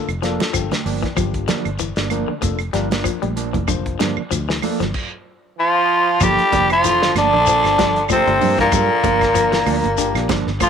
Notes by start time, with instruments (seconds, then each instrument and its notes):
Already playing: clean electric guitar D3
0.08 fingered electric bass F1, closed hi-hat, claves
0.22 clean electric guitar F3 A#3 D4, tine electric piano A#3 D4 F4 A4 F5, snare, closed hi-hat, shekere
0.40 snare, closed hi-hat, high conga
0.53 fingered electric bass G1, clean electric guitar F3, tine electric piano G5, kick, closed hi-hat, claves, shekere
0.71 clean electric guitar D3, snare, closed hi-hat, high conga
0.85 fingered electric bass G1, clean electric guitar F3 A#3 D4, open hi-hat, shekere
1.03 clean electric guitar E3, kick, snare, closed hi-hat
1.15 fingered electric bass G1, clean electric guitar F3, tine electric piano A#3 D4 F4 G4, kick, closed hi-hat, low conga, claves, shekere
1.34 kick, closed hi-hat
1.48 clean electric guitar D3 F3 A#3 D4, snare, closed hi-hat, high conga, low conga, shekere
1.65 fingered electric bass G1, closed hi-hat, claves
1.79 clean electric guitar E3, closed hi-hat, shekere
1.96 fingered electric bass G1, clean electric guitar D3 A#3 D4, snare, closed hi-hat
2.10 clean electric guitar F3 A#3 D4, tine electric piano A#3 D4 F4 A#4, closed hi-hat, high conga, claves, shekere
2.28 clean electric guitar D3
2.41 fingered electric bass F1, tine electric piano A#3 D4 F4 A4, muted clean electric guitar stroke, kick, closed hi-hat, high conga, shekere
2.59 closed hi-hat, claves
2.73 fingered electric bass G1, clean electric guitar F3 G3 D4, tine electric piano A#3 D4 F4 A#4, snare, closed hi-hat, shekere
2.91 clean electric guitar A#3 D4, snare, closed hi-hat, high conga
3.04 clean electric guitar F3, kick, closed hi-hat, claves, shekere
3.22 fingered electric bass A#1, clean electric guitar G3, closed hi-hat, high conga
3.36 clean electric guitar F3 A#3 D4, closed hi-hat, shekere
3.53 fingered electric bass F1, clean electric guitar E3, kick, closed hi-hat, high conga
3.68 clean electric guitar D3, tine electric piano A#3 D4 F4 C5, kick, closed hi-hat, low conga, claves, shekere
3.86 kick, closed hi-hat
3.99 fingered electric bass G2, clean electric guitar D3 F3 A#3 D4, snare, closed hi-hat, high conga, low conga, shekere
4.17 muted fingered electric bass stroke, claves
4.31 fingered electric bass D2, clean electric guitar F3, closed hi-hat, shekere
4.49 clean electric guitar E3, snare
4.62 clean electric guitar F3 A#3 D4, tine electric piano A#3 D4 F4 A4, open hi-hat, high conga, claves, shekere
4.80 fingered electric bass G1, clean electric guitar F3, snare, closed hi-hat, low conga
4.94 kick, crash
5.58 trombone F3, baritone saxophone F3, tenor saxophone F4
6.20 fingered electric bass G1, clean electric guitar F3 A#3 D4, baritone saxophone G3, trombone G3, tine electric piano A#3 D4 F4 A4, tenor saxophone G4, kick, closed hi-hat, high conga, low conga, claves, shekere
6.39 closed hi-hat
6.52 fingered electric bass F1, clean electric guitar D3 F3 A#3 D4, kick, snare, closed hi-hat, high conga, shekere
6.70 baritone saxophone F3, trombone F3, tenor saxophone F4, closed hi-hat, claves
6.84 clean electric guitar E3, tine electric piano A#3 D4 F4 A4, closed hi-hat, high conga, shekere
7.02 clean electric guitar D3, snare
7.15 fingered electric bass G1, baritone saxophone D3, trombone D3, clean electric guitar F3 A#3 D4, tenor saxophone D4, snare, closed hi-hat, high conga, claves, shekere
7.33 fingered electric bass A#1, clean electric guitar D3, high conga
7.47 clean electric guitar F3, tine electric piano A#3 D4 F4 C5, closed hi-hat, shekere
7.64 fingered electric bass G1, clean electric guitar A#3 D4, snare, closed hi-hat, claves
7.78 clean electric guitar F3 G3 D4, muted clean electric guitar stroke, kick, snare, closed hi-hat, high conga, shekere
7.96 closed hi-hat
8.09 baritone saxophone C3, trombone C3, clean electric guitar F3, tine electric piano A#3 D4 F4 A4, tenor saxophone C4, kick, closed hi-hat, high conga, claves, shekere
8.27 fingered electric bass G1, clean electric guitar G3, closed hi-hat, high conga
8.41 fingered electric bass G2, clean electric guitar F3 A#3 D4, open hi-hat, low conga, shekere
8.58 baritone saxophone A#2, trombone A#2, clean electric guitar E3 A#3 D4, tenor saxophone A#3, kick, snare, closed hi-hat
8.71 fingered electric bass G2, tine electric piano A#3 D4 F4 A4, muted clean electric guitar stroke, kick, closed hi-hat, high conga, low conga, claves, shekere
9.03 fingered electric bass G1, clean electric guitar D3 F3 A#3 D4, kick, closed hi-hat, high conga, shekere
9.21 kick, snare, closed hi-hat, claves
9.35 clean electric guitar F3, tine electric piano A#3 D4 F4 A#4, closed hi-hat, high conga, shekere
9.52 clean electric guitar E3, snare, closed hi-hat
9.66 fingered electric bass D2, clean electric guitar F3 A#3 D4, open hi-hat, high conga, claves, shekere
9.84 fingered electric bass G1, closed hi-hat, high conga
9.97 clean electric guitar D3, tine electric piano A#3 D4 F4 G4, closed hi-hat, shekere
10.15 fingered electric bass A#1, clean electric guitar A#3 D4, snare, closed hi-hat, claves
10.29 fingered electric bass G1, clean electric guitar F3 A#3 D4, kick, snare, closed hi-hat, high conga, shekere
10.47 fingered electric bass G1, snare
10.60 clean electric guitar F3, baritone saxophone F3, trombone F3, tine electric piano A#3 D4 F4 A4, tenor saxophone F4, kick, closed hi-hat, high conga, claves, shekere